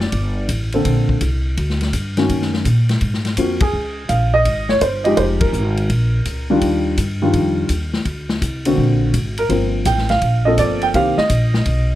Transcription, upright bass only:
0.00 0.12 F#1 medium
0.12 0.48 G1 medium
0.49 0.84 A1 medium
0.85 1.20 A#1 medium
1.21 1.56 C2 medium
1.57 1.92 D2 medium
1.93 2.28 G2 medium
2.29 2.64 F#2 medium
2.65 3.00 A#2 medium
3.01 3.36 G#2 medium
3.37 3.72 F2 medium
3.73 4.08 C#2 medium
4.09 4.44 A#1 medium
4.45 4.81 G#1 medium
4.82 5.17 G1 medium
5.17 5.52 F1 medium
5.53 5.88 G#1 medium
5.89 6.25 A#1 medium
6.26 6.61 C#2 medium
6.62 6.97 D#2 medium
6.98 7.33 G2 medium
7.33 7.69 F2 medium
7.69 8.05 D#2 medium
8.05 8.41 D2 medium
8.41 8.77 C2 medium
8.77 9.13 A#1 medium
9.14 9.49 G#1 medium
9.49 9.85 G1 medium
9.85 10.21 A1 medium
10.22 10.57 A#1 medium
10.58 10.93 G1 medium
10.94 11.16 C2 medium
11.17 muted upright bass stroke soft
11.30 11.65 A#1 medium
11.66 11.95 B1 medium

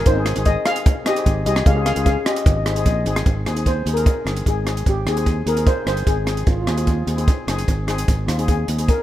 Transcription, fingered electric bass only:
0.06 0.35 G#1 loud
0.37 0.55 G#1 medium
1.26 1.45 G#1 medium
1.46 1.65 C2 medium
1.66 1.95 C#2 loud
1.96 2.15 C#2 medium
2.46 2.84 G#1 medium
2.86 3.04 A#1 medium
3.06 3.24 G#1 medium
3.26 3.45 G#1 medium
3.46 3.84 D#2 medium
3.86 4.05 D#2 medium
4.25 4.45 G1 medium
4.46 4.84 G#1 medium
4.86 5.06 G#1 medium
5.06 5.44 D#2 medium
5.46 5.66 D#2 medium
5.86 6.06 G1 medium
6.07 6.45 G#1 medium
6.47 6.66 G#1 medium
6.67 7.05 D#2 medium
7.07 7.26 D#2 medium
7.47 7.67 F#1 medium
7.68 8.06 G#1 medium
8.08 8.27 G#1 medium
8.28 8.66 D#2 medium
8.68 8.87 D#2 medium

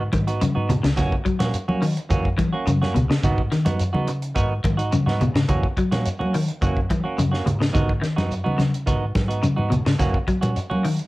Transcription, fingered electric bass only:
0.00 0.10 G#2 medium
0.14 0.39 G#2 medium
0.57 0.82 G#2 medium
0.84 0.96 C#2 medium
0.98 1.11 F#2 medium
1.26 muted fingered electric bass stroke soft
1.40 1.53 A#2 medium
1.69 1.94 F#3 medium
2.11 2.36 F#2 medium
2.67 2.92 F#2 medium
2.95 3.09 C#2 medium
3.23 3.49 G#2 medium
3.66 3.92 F#2 medium
3.95 4.32 C#3 medium
4.36 4.62 G#2 medium
4.64 4.90 G#2 medium
5.07 5.32 G#2 medium
5.35 5.47 G#2 medium
5.49 5.62 F#2 medium
5.77 muted fingered electric bass stroke soft
5.92 6.04 A#2 medium
6.20 6.46 F#3 medium
6.62 6.87 F#2 medium
7.18 7.43 F#2 medium
7.46 7.71 G#2 medium
7.75 8.00 G#2 medium
8.17 8.43 F#2 medium
8.45 8.83 C#3 medium
8.87 9.13 G#2 medium
9.15 9.41 G#2 medium
9.59 9.84 G#2 medium
9.86 9.98 G#2 medium
10.00 10.13 F#2 medium
10.28 muted fingered electric bass stroke soft
10.44 10.55 A#2 medium
10.72 10.97 F#3 medium

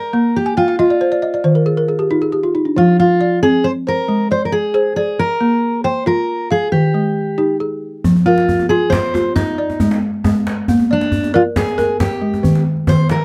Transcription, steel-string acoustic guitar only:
0.00 0.36 A#4 medium
0.36 0.56 G4 medium
0.57 0.78 F4 medium
0.79 2.51 F4 medium
2.78 2.98 F4 medium
3.00 3.42 F4 medium
3.43 3.65 G#4 loud
3.64 3.70 C5 medium
3.88 4.28 A#4 medium
4.31 4.45 C5 medium
4.45 4.52 A#4 medium
4.52 4.95 G#4 medium
4.96 5.19 G#4 medium
5.19 5.84 A#4 medium
5.84 6.05 C5 medium
6.07 6.48 A#4 medium
6.51 6.72 G#4 medium
6.72 7.56 G4 medium
8.26 8.69 F4 medium
8.69 8.92 G#4 medium
8.90 9.32 C5 medium
9.36 9.98 D#4 medium
10.93 11.35 D4 medium
11.35 11.41 F4 medium
11.57 12.00 G#4 medium
12.01 12.62 G4 medium
12.89 13.09 C5 loud
13.11 13.25 A#4 medium

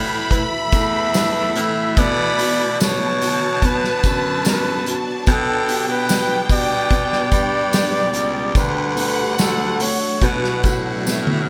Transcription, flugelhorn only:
0.32 2.00 E5 loud
1.99 2.81 D5 loud
2.82 3.67 C#5 medium
3.65 4.46 B4 loud
4.48 5.04 B4 loud
5.30 5.86 A4 medium
5.91 6.47 B4 medium
6.53 8.59 D5 loud
8.58 9.39 B4 medium
9.40 9.84 A4 medium
9.82 10.26 C#5 medium
10.25 11.07 B4 medium

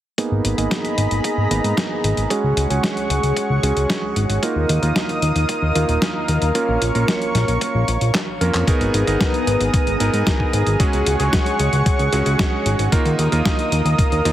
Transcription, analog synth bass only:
0.31 0.41 G#1 medium
0.44 0.54 G#1 medium
0.58 0.68 G#1 medium
0.98 1.07 G#1 medium
1.11 1.21 G#1 medium
1.37 1.47 G#1 medium
1.51 1.60 G#1 medium
1.64 1.74 G#2 medium
2.04 2.14 G#1 medium
2.17 2.27 G#1 medium
2.44 2.53 C#2 medium
2.57 2.67 C#2 medium
2.70 2.80 C#2 medium
3.10 3.20 C#2 medium
3.23 3.33 C#2 medium
3.50 3.59 C#2 medium
3.63 3.73 C#2 medium
3.76 3.86 C#2 medium
4.16 4.26 G#1 medium
4.29 4.39 G#1 medium
4.56 4.66 D#2 medium
4.69 4.79 D#2 medium
4.83 4.92 D#2 medium
5.22 5.32 D#2 medium
5.36 5.45 D#2 medium
5.62 5.72 D#2 medium
5.75 5.85 D#2 medium
5.89 5.98 D#1 medium
6.29 6.38 D#2 medium
6.42 6.52 D#2 medium
6.69 6.78 A#1 medium
6.82 6.91 A#1 medium
6.95 7.05 A#1 medium
7.35 7.45 A#1 medium
7.48 7.58 A#1 medium
7.75 7.84 A#1 medium
7.88 7.98 A#1 medium
8.01 8.11 A#1 medium
8.41 8.51 F2 medium
8.54 8.64 F2 medium
8.81 8.91 G#1 medium
8.94 9.04 G#1 medium
9.07 9.17 G#1 medium
9.47 9.57 G#1 loud
9.60 9.70 G#1 medium
9.87 9.97 G#1 medium
10.00 10.10 G#1 medium
10.13 10.23 G#2 medium
10.53 10.63 G#1 medium
10.67 10.76 G#1 medium
10.93 11.03 C#2 medium
11.06 11.16 C#2 medium
11.20 11.29 C#2 medium
11.60 11.69 C#2 medium
11.73 11.83 C#2 medium
11.99 12.09 C#2 medium
12.13 12.22 C#2 medium
12.26 12.36 C#2 medium
12.66 12.75 G#1 medium
12.79 12.89 G#1 medium
13.06 13.15 D#2 medium
13.19 13.29 D#2 loud
13.32 13.42 D#2 medium
13.72 13.82 D#2 medium
13.85 13.95 D#2 medium
14.12 14.21 D#2 medium
14.25 14.33 D#2 medium

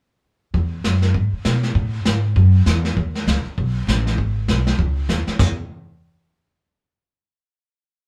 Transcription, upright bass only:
0.54 0.83 E2 medium
0.84 1.14 F#2 medium
1.14 1.31 G#2 medium
1.33 muted upright bass stroke soft
1.45 1.75 B2 medium
1.75 2.05 A2 medium
2.05 2.35 G#2 medium
2.36 2.66 F#2 medium
2.66 2.96 E2 loud
2.97 3.26 D#2 medium
3.27 3.44 C#2 medium
3.45 muted upright bass stroke soft
3.58 3.87 B1 medium
3.87 4.17 A1 medium
4.18 4.47 G#1 medium
4.48 4.78 B1 medium
4.78 5.08 C#2 medium
5.09 5.26 D#2 loud
5.28 muted upright bass stroke soft
5.39 5.56 E2 medium

